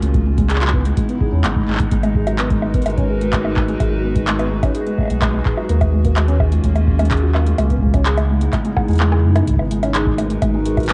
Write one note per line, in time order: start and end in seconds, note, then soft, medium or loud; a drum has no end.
0.02 0.92 C#2 loud
0.02 1.89 C#3 medium
0.02 5.65 G#3 medium
0.02 0.09 G#3 medium
0.02 1.89 B3 medium
0.02 5.65 D#4 medium
0.02 1.89 E4 medium
0.02 closed hi-hat medium
0.14 0.21 G#3 medium
0.14 kick loud
0.14 closed hi-hat soft
0.26 0.33 G#3 medium
0.38 0.42 G#3 loud
0.38 kick loud
0.38 closed hi-hat soft
0.50 0.60 G#4 medium
0.50 clap medium
0.50 closed hi-hat medium
0.56 clap medium
0.61 0.72 F#3 medium
0.61 clap medium
0.61 closed hi-hat soft
0.67 clap loud
0.73 0.80 B3 medium
0.73 kick loud
0.85 0.89 G#3 medium
0.85 closed hi-hat soft
0.97 1.04 G#3 medium
0.97 kick loud
0.97 closed hi-hat medium
1.09 1.13 B3 medium
1.09 closed hi-hat soft
1.20 1.27 G#4 medium
1.20 kick loud
1.32 1.43 E2 medium
1.32 1.39 C#4 medium
1.44 1.62 G#1 loud
1.44 1.48 G#3 medium
1.44 clap loud
1.44 closed hi-hat medium
1.56 1.63 G#3 medium
1.56 kick loud
1.68 1.85 G#1 loud
1.68 1.75 G#3 loud
1.68 clap soft
1.70 clap soft
1.72 clap soft
1.75 clap soft
1.77 1.84 G#3 medium
1.77 kick loud
1.77 clap medium
1.77 closed hi-hat soft
1.91 2.81 G#1 loud
1.91 1.98 G#3 medium
1.91 7.54 F#4 medium
1.91 3.78 A#4 medium
1.91 5.66 B4 medium
1.91 kick loud
1.91 closed hi-hat medium
2.03 2.07 G#3 loud
2.03 closed hi-hat soft
2.03 high bongo medium
2.15 2.25 G#4 medium
2.15 kick loud
2.27 2.37 F#3 medium
2.27 closed hi-hat soft
2.27 high bongo medium
2.38 2.45 B3 medium
2.38 clap loud
2.38 closed hi-hat medium
2.50 2.54 G#3 medium
2.50 kick loud
2.50 closed hi-hat soft
2.62 2.69 G#3 medium
2.62 high bongo soft
2.74 2.78 B3 medium
2.74 kick loud
2.74 closed hi-hat soft
2.82 3.76 G#1 medium
2.82 2.93 G#3 medium
2.82 closed hi-hat soft
2.86 closed hi-hat medium
2.86 high bongo medium
2.90 closed hi-hat soft
2.98 3.02 C#4 medium
2.98 kick loud
2.98 closed hi-hat soft
3.09 3.20 G#4 medium
3.21 3.31 G#3 medium
3.21 closed hi-hat medium
3.33 3.40 G#3 medium
3.33 kick loud
3.33 clap loud
3.33 closed hi-hat medium
3.33 high bongo soft
3.45 3.52 G#3 medium
3.45 high bongo medium
3.57 3.64 G#3 medium
3.57 kick loud
3.57 clap medium
3.68 3.73 G#3 loud
3.68 closed hi-hat soft
3.80 4.70 G#1 loud
3.80 3.91 G#4 medium
3.80 5.67 G#4 medium
3.80 kick loud
3.80 closed hi-hat medium
3.80 high bongo medium
3.92 4.02 F#3 medium
4.04 4.11 B3 medium
4.16 4.20 G#3 medium
4.16 kick loud
4.16 closed hi-hat soft
4.27 4.34 G#3 medium
4.27 clap loud
4.27 closed hi-hat medium
4.39 4.43 B3 medium
4.39 closed hi-hat soft
4.39 high bongo medium
4.51 4.58 G#3 medium
4.63 4.67 C#4 loud
4.63 kick loud
4.63 closed hi-hat medium
4.63 high bongo medium
4.75 4.85 G#4 medium
4.75 closed hi-hat medium
4.86 4.97 G#3 medium
4.86 closed hi-hat soft
4.98 5.05 G#3 medium
4.98 kick loud
4.98 high bongo soft
5.01 high bongo soft
5.03 high bongo soft
5.06 high bongo soft
5.08 5.41 B1 medium
5.08 5.17 G#3 medium
5.08 closed hi-hat medium
5.08 high bongo soft
5.22 5.29 G#3 medium
5.22 kick loud
5.22 clap loud
5.22 closed hi-hat medium
5.22 high bongo medium
5.34 5.38 G#3 loud
5.46 5.54 D#1 medium
5.46 5.56 G#4 medium
5.46 kick loud
5.46 clap medium
5.57 5.68 F#3 medium
5.57 high bongo medium
5.69 6.59 D#2 loud
5.69 7.56 D#3 medium
5.69 5.76 A#3 medium
5.69 7.56 A#3 medium
5.69 7.56 C#4 medium
5.69 7.56 F4 medium
5.69 closed hi-hat medium
5.81 5.85 G#3 medium
5.81 kick loud
5.81 closed hi-hat soft
5.81 high bongo medium
5.93 6.00 G#3 medium
6.05 6.09 A#3 medium
6.05 kick loud
6.05 closed hi-hat soft
6.16 6.23 G#3 medium
6.16 clap loud
6.16 closed hi-hat medium
6.16 high bongo soft
6.28 6.32 C#4 loud
6.28 closed hi-hat soft
6.40 6.51 G#4 medium
6.40 kick loud
6.40 high bongo medium
6.52 6.62 G#3 medium
6.52 closed hi-hat medium
6.64 7.53 D#2 medium
6.64 6.71 G#3 medium
6.64 kick loud
6.64 closed hi-hat medium
6.76 6.83 G#3 medium
6.76 closed hi-hat soft
6.76 high bongo medium
6.87 6.94 G#3 medium
6.87 kick loud
6.99 7.03 G#3 loud
6.99 closed hi-hat medium
6.99 high bongo medium
7.05 closed hi-hat soft
7.11 7.21 G#4 medium
7.11 kick loud
7.11 clap loud
7.11 closed hi-hat medium
7.17 closed hi-hat soft
7.23 7.33 F#3 medium
7.35 7.42 A#3 medium
7.35 clap medium
7.35 high bongo medium
7.46 7.51 G#3 medium
7.46 closed hi-hat soft
7.58 8.48 C#2 loud
7.58 9.45 C#3 medium
7.58 9.45 G#3 medium
7.58 7.65 G#3 medium
7.58 9.45 B3 medium
7.58 9.45 D#4 medium
7.58 9.45 E4 medium
7.58 closed hi-hat medium
7.58 high bongo medium
7.70 7.74 B3 medium
7.70 kick soft
7.70 closed hi-hat soft
7.78 7.89 G#3 medium
7.78 kick medium
7.86 kick medium
7.94 7.98 C#4 loud
7.94 kick loud
7.94 closed hi-hat medium
7.94 high bongo medium
8.06 8.16 G#4 medium
8.06 clap loud
8.06 closed hi-hat medium
8.17 8.28 G#3 medium
8.17 closed hi-hat soft
8.17 high bongo medium
8.29 8.36 G#3 medium
8.41 8.48 G#3 medium
8.41 closed hi-hat medium
8.53 8.60 G#3 medium
8.53 kick loud
8.53 clap medium
8.53 closed hi-hat medium
8.53 high bongo medium
8.65 8.69 G#3 loud
8.65 closed hi-hat soft
8.76 8.83 G#3 medium
8.76 kick loud
8.76 cross-stick medium
8.76 high bongo medium
8.88 9.25 E2 medium
8.88 8.92 G#3 loud
8.88 closed hi-hat soft
8.91 closed hi-hat soft
8.93 closed hi-hat soft
8.95 closed hi-hat soft
8.98 9.07 G#3 loud
8.98 cross-stick medium
8.98 clap loud
8.98 closed hi-hat soft
9.12 9.16 G#4 medium
9.12 cross-stick medium
9.12 high bongo medium
9.24 9.41 F#2 medium
9.24 9.34 G#3 medium
9.35 9.46 G#3 loud
9.35 cross-stick medium
9.35 closed hi-hat medium
9.35 high bongo medium
9.47 10.37 G#1 loud
9.47 10.93 G#3 medium
9.47 9.54 G#3 medium
9.47 10.93 D#4 medium
9.47 10.93 F#4 medium
9.47 10.93 A#4 medium
9.47 10.93 B4 medium
9.47 kick medium
9.47 closed hi-hat medium
9.50 kick medium
9.53 kick medium
9.56 9.63 B3 medium
9.56 kick medium
9.56 high bongo medium
9.71 9.78 G#3 medium
9.71 closed hi-hat medium
9.83 9.87 C#4 loud
9.83 closed hi-hat medium
9.83 high bongo medium
9.95 10.05 G#4 medium
9.95 clap loud
9.95 closed hi-hat medium
10.06 10.17 G#3 medium
10.06 kick loud
10.18 10.25 G#3 medium
10.18 closed hi-hat medium
10.18 high bongo medium
10.30 10.37 G#3 medium
10.30 closed hi-hat medium
10.42 10.93 G#1 medium
10.42 10.49 G#3 medium
10.42 kick loud
10.42 closed hi-hat medium
10.42 high bongo medium
10.54 10.58 G#3 loud
10.65 10.76 G#4 medium
10.65 closed hi-hat medium
10.77 10.88 F#3 medium
10.77 kick loud
10.77 closed hi-hat soft
10.77 high bongo medium
10.80 closed hi-hat soft
10.83 closed hi-hat soft
10.86 clap loud
10.86 closed hi-hat soft
10.89 10.93 B3 medium
10.89 closed hi-hat medium